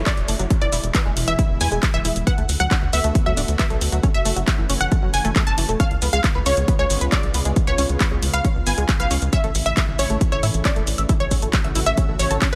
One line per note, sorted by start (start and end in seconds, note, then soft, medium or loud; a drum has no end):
0.00 0.49 C#3 medium
0.00 0.49 F#3 medium
0.00 0.49 A3 medium
0.00 0.49 E4 medium
0.00 downlifter medium
0.06 0.10 C#4 loud
0.06 0.25 D5 medium
0.06 kick loud
0.06 clap loud
0.06 closed hi-hat medium
0.06 shaker soft
0.17 0.25 E1 medium
0.17 closed hi-hat soft
0.28 0.36 F#1 loud
0.28 0.35 A3 medium
0.28 open hi-hat loud
0.28 shaker medium
0.39 0.47 F#1 medium
0.39 0.46 F#3 medium
0.39 closed hi-hat medium
0.39 shaker soft
0.50 2.25 B2 medium
0.50 2.25 E3 medium
0.50 2.25 G#3 medium
0.50 2.25 E4 loud
0.50 kick loud
0.50 closed hi-hat medium
0.50 shaker soft
0.61 0.69 E1 medium
0.61 0.68 E3 medium
0.61 0.90 D5 loud
0.61 closed hi-hat soft
0.72 0.80 E1 loud
0.72 0.76 E4 loud
0.72 open hi-hat loud
0.72 shaker medium
0.83 0.91 E1 medium
0.83 closed hi-hat medium
0.83 shaker soft
0.95 1.01 B3 medium
0.95 kick loud
0.95 clap loud
0.95 closed hi-hat medium
0.95 shaker soft
1.06 1.13 E1 medium
1.06 1.12 G#3 medium
1.17 1.24 E1 loud
1.17 open hi-hat loud
1.17 shaker medium
1.28 1.35 E1 medium
1.28 1.34 E3 medium
1.28 1.56 E5 loud
1.28 closed hi-hat medium
1.28 shaker soft
1.39 1.42 E4 loud
1.39 kick loud
1.39 closed hi-hat medium
1.39 shaker soft
1.50 1.57 E1 medium
1.61 1.68 E2 loud
1.61 1.67 B3 medium
1.61 1.89 G#5 loud
1.61 open hi-hat loud
1.61 shaker medium
1.72 1.79 E1 loud
1.72 1.78 G#3 medium
1.72 closed hi-hat medium
1.72 shaker soft
1.83 kick loud
1.83 clap loud
1.83 closed hi-hat medium
1.83 shaker soft
1.94 2.01 D1 medium
1.94 2.00 E3 medium
1.94 2.22 E5 loud
1.94 closed hi-hat soft
2.05 2.12 E1 loud
2.05 2.09 E4 loud
2.05 open hi-hat loud
2.05 shaker medium
2.16 2.23 E1 medium
2.16 closed hi-hat medium
2.16 shaker soft
2.27 4.02 D3 medium
2.27 5.76 A3 medium
2.27 2.33 B3 medium
2.27 4.02 B3 medium
2.27 5.76 F#4 loud
2.27 2.55 F#5 loud
2.27 kick loud
2.27 closed hi-hat medium
2.27 shaker soft
2.38 2.45 D2 medium
2.38 2.44 A3 medium
2.38 closed hi-hat soft
2.49 2.56 D2 loud
2.49 open hi-hat loud
2.49 shaker medium
2.60 2.68 D2 medium
2.60 2.66 F#3 medium
2.60 2.88 F#5 loud
2.60 closed hi-hat medium
2.60 shaker soft
2.71 2.75 D4 loud
2.71 kick loud
2.71 clap loud
2.71 closed hi-hat medium
2.71 shaker soft
2.82 2.90 D2 medium
2.93 3.01 D2 loud
2.93 2.99 B3 medium
2.93 3.21 E5 medium
2.93 open hi-hat loud
2.93 shaker medium
3.04 3.12 D2 medium
3.04 3.10 A3 medium
3.04 closed hi-hat medium
3.04 shaker soft
3.15 kick loud
3.15 closed hi-hat medium
3.15 shaker soft
3.26 3.34 D2 medium
3.26 3.32 F#3 medium
3.26 3.54 E5 medium
3.37 3.45 D1 loud
3.37 3.41 D4 loud
3.37 open hi-hat loud
3.37 shaker medium
3.48 3.56 D2 medium
3.48 closed hi-hat medium
3.48 shaker soft
3.59 3.66 B3 medium
3.59 3.78 E5 medium
3.59 kick loud
3.59 clap loud
3.59 closed hi-hat medium
3.59 shaker soft
3.70 3.78 B1 medium
3.70 3.77 A3 medium
3.70 closed hi-hat soft
3.81 3.89 D2 loud
3.81 open hi-hat loud
3.81 shaker medium
3.92 4.00 D2 loud
3.92 3.99 F#3 medium
3.92 closed hi-hat medium
3.92 shaker soft
4.03 5.78 E3 medium
4.03 4.07 C#4 loud
4.03 5.78 C#4 medium
4.03 kick loud
4.03 closed hi-hat medium
4.03 shaker soft
4.14 4.22 F#1 medium
4.14 4.43 E5 loud
4.14 closed hi-hat soft
4.25 4.33 F#1 loud
4.25 4.32 A3 medium
4.25 open hi-hat loud
4.25 shaker medium
4.36 4.44 F#1 medium
4.36 4.43 F#3 medium
4.36 closed hi-hat medium
4.36 shaker soft
4.48 kick loud
4.48 clap loud
4.48 closed hi-hat medium
4.48 shaker soft
4.58 4.66 F#1 medium
4.58 4.65 E3 medium
4.69 4.77 F#1 loud
4.69 4.73 C#4 loud
4.69 open hi-hat loud
4.69 shaker medium
4.81 4.88 F#1 medium
4.81 5.09 F#5 loud
4.81 closed hi-hat medium
4.81 shaker soft
4.92 4.98 A3 medium
4.92 kick loud
4.92 closed hi-hat medium
4.92 shaker soft
5.03 5.10 F#1 medium
5.03 5.09 F#3 medium
5.14 5.21 F#1 loud
5.14 5.42 G#5 medium
5.14 open hi-hat loud
5.14 shaker medium
5.25 5.32 F#1 loud
5.25 5.31 A3 loud
5.25 closed hi-hat soft
5.25 shaker soft
5.36 5.42 A3 loud
5.36 kick loud
5.36 clap loud
5.36 closed hi-hat medium
5.36 shaker soft
5.47 5.54 F#1 medium
5.47 5.75 A5 loud
5.47 closed hi-hat soft
5.58 5.65 F#1 loud
5.58 5.64 E3 medium
5.58 open hi-hat loud
5.58 shaker medium
5.69 5.76 E1 medium
5.69 5.78 A3 medium
5.69 closed hi-hat medium
5.69 shaker soft
5.80 9.29 C#3 medium
5.80 9.29 G#3 medium
5.80 9.29 B3 medium
5.80 5.84 C#4 loud
5.80 9.29 F4 medium
5.80 6.08 F5 loud
5.80 kick loud
5.80 closed hi-hat medium
5.80 shaker soft
5.91 5.98 C#2 medium
5.91 closed hi-hat soft
6.02 6.09 C#2 medium
6.02 6.08 B3 medium
6.02 open hi-hat loud
6.02 shaker medium
6.13 6.20 C#2 medium
6.13 6.19 G#3 medium
6.13 6.41 F5 medium
6.13 closed hi-hat medium
6.13 shaker soft
6.24 kick loud
6.24 clap loud
6.24 closed hi-hat medium
6.24 shaker soft
6.35 6.43 C#2 medium
6.35 6.39 B4 medium
6.46 6.54 C#2 loud
6.46 6.50 C#4 loud
6.46 6.74 C#5 medium
6.46 open hi-hat loud
6.46 shaker medium
6.57 6.65 C#2 medium
6.57 closed hi-hat soft
6.57 shaker soft
6.68 6.74 B3 medium
6.68 kick loud
6.68 closed hi-hat medium
6.68 shaker soft
6.79 6.87 C#2 medium
6.79 6.85 G#3 medium
6.79 7.07 C#5 medium
6.90 6.98 G#1 loud
6.90 open hi-hat loud
6.90 shaker medium
7.01 7.09 C#2 medium
7.01 7.05 B4 medium
7.01 closed hi-hat soft
7.01 shaker soft
7.12 7.16 C#4 loud
7.12 7.31 D5 medium
7.12 kick loud
7.12 clap loud
7.12 closed hi-hat medium
7.12 shaker soft
7.23 7.31 B1 medium
7.23 closed hi-hat soft
7.34 7.42 C#2 loud
7.34 7.41 B3 medium
7.34 open hi-hat loud
7.34 shaker medium
7.45 7.53 C#2 medium
7.45 7.52 G#3 medium
7.45 closed hi-hat medium
7.45 shaker soft
7.56 kick loud
7.56 closed hi-hat medium
7.56 shaker soft
7.67 7.75 C#2 medium
7.67 7.71 B4 medium
7.67 7.96 C#5 medium
7.67 closed hi-hat soft
7.78 7.86 C#2 loud
7.78 7.82 C#4 loud
7.78 open hi-hat loud
7.78 shaker medium
7.89 7.97 C#2 medium
7.89 closed hi-hat medium
7.89 shaker soft
8.00 8.07 B3 medium
8.00 kick loud
8.00 clap loud
8.00 closed hi-hat medium
8.00 shaker soft
8.11 8.19 C#2 medium
8.11 8.18 G#3 medium
8.22 8.30 C#2 loud
8.22 open hi-hat loud
8.22 shaker medium
8.33 8.41 C#2 medium
8.33 8.37 B4 medium
8.33 8.62 F5 loud
8.33 closed hi-hat medium
8.33 shaker soft
8.45 8.48 C#4 loud
8.45 kick loud
8.45 closed hi-hat medium
8.45 shaker soft
8.56 8.63 C#2 medium
8.67 8.74 G#1 loud
8.67 8.73 B3 medium
8.67 8.95 G#5 medium
8.67 open hi-hat loud
8.67 shaker medium
8.78 8.85 C#2 medium
8.78 8.84 G#3 medium
8.78 closed hi-hat soft
8.78 shaker soft
8.89 kick loud
8.89 clap loud
8.89 closed hi-hat medium
8.89 shaker soft
9.00 9.07 B1 medium
9.00 9.03 B4 medium
9.00 9.28 F5 loud
9.00 closed hi-hat soft
9.11 9.18 C#2 loud
9.11 9.14 C#4 loud
9.11 open hi-hat loud
9.11 shaker medium
9.22 9.29 C#2 loud
9.22 closed hi-hat medium
9.22 shaker soft
9.33 12.55 C#3 medium
9.33 12.55 E3 medium
9.33 12.55 A3 medium
9.33 9.39 C#4 medium
9.33 11.08 E4 loud
9.33 9.61 E5 loud
9.33 kick loud
9.33 closed hi-hat medium
9.33 shaker soft
9.44 9.51 A1 medium
9.44 9.50 A3 medium
9.44 closed hi-hat soft
9.55 9.62 A1 loud
9.55 open hi-hat loud
9.55 shaker medium
9.66 9.73 A1 medium
9.66 9.70 E5 medium
9.66 9.94 E5 loud
9.66 closed hi-hat medium
9.66 shaker soft
9.77 9.81 E4 loud
9.77 kick loud
9.77 clap loud
9.77 closed hi-hat medium
9.77 shaker soft
9.88 9.95 A1 medium
9.99 10.06 A1 loud
9.99 10.05 C#4 medium
9.99 10.27 C#5 medium
9.99 open hi-hat loud
9.99 shaker medium
10.10 10.18 A1 medium
10.10 10.16 A3 medium
10.10 closed hi-hat medium
10.10 shaker soft
10.21 kick loud
10.21 closed hi-hat medium
10.21 shaker soft
10.32 10.40 A1 medium
10.32 10.60 C#5 loud
10.32 10.36 E5 medium
10.43 10.51 A2 loud
10.43 10.47 E4 loud
10.43 open hi-hat loud
10.43 shaker medium
10.54 10.62 A1 loud
10.54 closed hi-hat medium
10.54 shaker soft
10.65 10.71 C#4 medium
10.65 10.84 D5 medium
10.65 kick loud
10.65 clap loud
10.65 closed hi-hat medium
10.65 shaker soft
10.76 10.84 E1 medium
10.76 10.82 A3 medium
10.76 closed hi-hat soft
10.87 10.95 A1 loud
10.87 open hi-hat loud
10.87 shaker medium
10.98 11.06 A1 medium
10.98 11.02 E5 medium
10.98 closed hi-hat medium
10.98 shaker soft
11.09 11.13 E4 loud
11.09 12.55 F#4 loud
11.09 kick loud
11.09 closed hi-hat medium
11.09 shaker soft
11.20 11.28 A1 medium
11.20 11.48 C#5 medium
11.20 closed hi-hat soft
11.31 11.39 A1 loud
11.31 11.38 C#4 medium
11.31 kick medium
11.31 open hi-hat loud
11.31 shaker medium
11.42 11.50 A1 medium
11.42 11.49 A3 medium
11.42 closed hi-hat medium
11.42 shaker soft
11.53 kick loud
11.53 clap loud
11.53 closed hi-hat medium
11.53 shaker soft
11.64 11.72 A1 medium
11.64 11.68 E5 medium
11.64 closed hi-hat soft
11.75 11.83 A1 loud
11.75 11.79 E4 loud
11.75 open hi-hat loud
11.75 shaker medium
11.86 11.94 A1 medium
11.86 12.15 E5 loud
11.86 closed hi-hat medium
11.86 shaker soft
11.97 12.04 C#4 medium
11.97 kick loud
11.97 closed hi-hat medium
11.97 shaker soft
12.09 12.16 A1 medium
12.09 12.15 A3 medium
12.19 12.27 A1 loud
12.19 12.48 C#5 medium
12.19 open hi-hat loud
12.19 shaker medium
12.31 12.38 A1 loud
12.31 12.37 A4 loud
12.31 closed hi-hat medium
12.31 shaker soft
12.42 12.48 C#4 medium
12.42 kick loud
12.42 clap loud
12.42 closed hi-hat medium
12.42 shaker soft